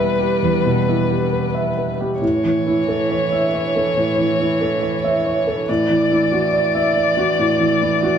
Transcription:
0.00 0.38 E2 soft
0.00 0.65 B2 soft
0.00 2.01 G3 soft
0.00 0.88 E4 soft
0.00 0.19 G4 soft
0.00 1.32 B4 soft
0.00 2.01 B4 soft
0.00 0.11 E5 soft
0.19 0.56 G4 soft
0.42 2.18 E2 soft
0.65 1.01 B2 soft
0.88 1.23 E4 soft
1.10 1.46 G4 soft
1.32 1.68 B4 soft
1.55 1.90 E5 soft
1.77 2.13 B4 soft
2.00 2.22 G4 soft
2.20 3.92 A2 soft
2.20 5.63 E3 soft
2.20 5.71 C#5 soft
2.44 2.79 E3 soft
2.66 3.01 E4 soft
2.88 3.23 A4 soft
3.11 3.45 C#5 soft
3.32 3.66 E5 soft
3.54 3.88 C#5 soft
3.76 4.09 A4 soft
3.97 5.65 A2 soft
4.18 4.52 E3 soft
4.40 4.74 E4 soft
4.61 4.95 A4 soft
4.82 5.17 C#5 soft
5.04 5.39 E5 soft
5.26 5.60 C#5 soft
5.47 5.68 A4 soft
5.67 7.35 A2 soft
5.67 8.18 E3 soft
5.67 8.18 D5 soft
5.90 6.24 E3 soft
6.11 6.45 E4 soft
6.32 6.66 F#4 soft
6.53 6.87 D5 soft
6.75 7.09 E5 soft
6.96 7.30 D5 soft
7.17 7.52 F#4 soft
7.39 8.18 A2 soft
7.60 7.94 E3 soft
7.82 8.15 E4 soft
8.03 8.18 F#4 soft

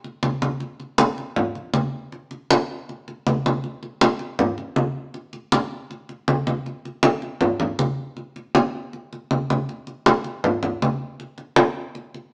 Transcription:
0.04 high conga soft
0.23 high conga medium
0.42 high conga medium
0.60 high conga soft
0.80 high conga soft
0.98 high conga medium
1.18 high conga soft
1.36 high conga soft
1.36 low conga medium
1.55 high conga soft
1.74 high conga loud
2.12 high conga soft
2.31 high conga soft
2.50 high conga loud
2.89 high conga soft
3.08 high conga soft
3.27 high conga medium
3.46 high conga medium
3.64 high conga soft
3.83 high conga soft
4.01 high conga medium
4.19 high conga soft
4.39 high conga soft
4.39 low conga medium
4.58 high conga soft
4.76 high conga medium
5.14 high conga soft
5.33 high conga soft
5.52 high conga medium
5.91 high conga soft
6.09 high conga soft
6.28 high conga loud
6.47 high conga medium
6.66 high conga soft
6.85 high conga soft
7.03 high conga loud
7.22 high conga soft
7.41 high conga soft
7.41 low conga medium
7.60 high conga soft
7.60 low conga medium
7.79 high conga medium
8.17 high conga soft
8.36 high conga soft
8.55 high conga medium
8.93 high conga soft
9.13 high conga soft
9.31 high conga medium
9.50 high conga medium
9.69 high conga soft
9.87 high conga soft
10.06 high conga loud
10.24 high conga soft
10.44 high conga soft
10.44 low conga medium
10.63 high conga soft
10.63 low conga medium
10.82 high conga medium
11.20 high conga soft
11.38 high conga soft
11.56 high conga loud
11.95 high conga soft
12.14 high conga soft

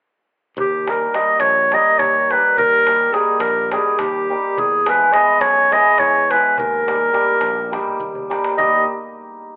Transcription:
0.57 1.07 D#2 medium
0.57 0.92 G4 medium
0.57 darbuka dum medium
0.87 1.13 G3 soft
0.87 1.07 A#3 medium
0.87 1.07 D#4 soft
0.87 1.08 G4 soft
0.87 1.16 A#4 medium
0.87 darbuka tek medium
1.14 1.71 G3 medium
1.14 1.34 A#3 medium
1.14 1.34 D#4 medium
1.14 1.34 G4 medium
1.14 1.41 D#5 medium
1.14 darbuka tek medium
1.28 darbuka tek soft
1.40 1.75 A#1 medium
1.40 1.75 C#5 medium
1.40 darbuka tek medium
1.56 darbuka tek soft
1.72 2.30 G3 medium
1.72 1.92 A#3 medium
1.72 1.92 D#4 soft
1.72 1.93 G4 medium
1.72 2.00 D#5 medium
1.72 darbuka tek medium
1.86 darbuka tek soft
1.98 2.34 D#2 medium
1.98 2.33 C#5 medium
1.98 darbuka tek medium
1.98 darbuka dum medium
2.14 darbuka tek soft
2.30 2.87 G3 medium
2.30 2.51 A#3 soft
2.30 2.51 D#4 soft
2.30 2.52 G4 medium
2.30 2.57 B4 medium
2.30 darbuka tek medium
2.44 darbuka tek soft
2.57 3.08 D#2 medium
2.57 3.14 A#4 loud
2.57 darbuka dum medium
2.72 darbuka tek soft
2.87 3.12 G3 soft
2.87 3.07 A#3 soft
2.87 3.08 D#4 soft
2.87 3.08 G4 medium
2.87 darbuka tek medium
3.13 3.71 G3 medium
3.13 3.34 A#3 medium
3.13 3.34 D#4 medium
3.13 3.34 G4 medium
3.13 3.41 G#4 medium
3.13 darbuka tek medium
3.27 darbuka tek soft
3.40 3.75 A#1 medium
3.40 3.71 A#4 medium
3.40 darbuka tek medium
3.56 darbuka tek soft
3.71 4.29 G3 medium
3.71 3.92 A#3 soft
3.71 3.92 D#4 medium
3.71 3.93 G4 medium
3.71 4.00 G#4 medium
3.71 darbuka tek medium
3.87 darbuka tek soft
3.99 4.35 D#2 medium
3.99 4.61 G4 medium
3.99 darbuka tek medium
3.99 darbuka dum medium
4.15 darbuka tek soft
4.30 4.63 G3 medium
4.30 4.51 A#3 soft
4.30 4.51 D#4 soft
4.30 4.51 G4 medium
4.44 darbuka tek soft
4.58 5.08 E2 medium
4.58 4.90 G#4 medium
4.58 darbuka dum medium
4.72 darbuka tek soft
4.86 5.12 G#3 medium
4.86 5.07 B3 medium
4.86 5.07 E4 soft
4.86 5.08 G#4 medium
4.86 5.14 B4 medium
4.86 darbuka tek medium
5.12 5.70 G#3 medium
5.12 5.34 B3 medium
5.12 5.34 E4 medium
5.12 5.34 G#4 medium
5.12 5.42 D#5 medium
5.12 darbuka tek medium
5.28 darbuka tek soft
5.41 5.76 B1 medium
5.41 5.74 C#5 medium
5.41 darbuka tek medium
5.57 darbuka tek soft
5.71 6.29 G#3 medium
5.71 5.92 B3 medium
5.71 5.93 E4 medium
5.71 5.93 G#4 medium
5.71 6.00 D#5 medium
5.71 darbuka tek medium
5.86 darbuka tek soft
5.98 6.35 E2 medium
5.98 6.32 C#5 medium
5.98 darbuka tek medium
5.98 darbuka dum soft
6.14 darbuka tek soft
6.30 6.63 G#3 soft
6.30 6.51 B3 soft
6.30 6.52 E4 medium
6.30 6.52 G#4 medium
6.30 6.58 B4 medium
6.30 darbuka tek medium
6.57 7.09 D#2 medium
6.57 7.95 A#4 medium
6.57 darbuka dum medium
6.74 darbuka tek soft
6.87 7.12 G3 medium
6.87 7.07 A#3 medium
6.87 7.07 D#4 soft
6.87 7.08 G4 medium
6.87 darbuka tek medium
7.02 darbuka tek soft
7.13 7.70 G3 medium
7.13 7.33 A#3 medium
7.13 7.34 D#4 medium
7.13 7.34 G4 medium
7.13 darbuka tek medium
7.28 darbuka tek soft
7.41 7.77 A#1 medium
7.41 darbuka tek medium
7.57 darbuka tek soft
7.72 8.29 G3 medium
7.72 7.92 A#3 medium
7.72 7.93 D#4 medium
7.72 7.93 G4 medium
7.72 darbuka tek medium
7.87 darbuka dum soft
8.00 8.35 D#2 medium
8.00 darbuka dum medium
8.15 darbuka dum medium
8.30 8.58 G3 medium
8.30 8.51 A#3 medium
8.30 8.51 D#4 medium
8.30 8.51 G4 medium
8.30 darbuka tek medium
8.44 darbuka tek medium
8.57 8.86 D#2 medium
8.57 8.86 G3 medium
8.57 8.86 A#3 medium
8.57 8.86 D#4 medium
8.57 8.86 G4 medium
8.57 8.85 D#5 medium
8.57 darbuka dum medium

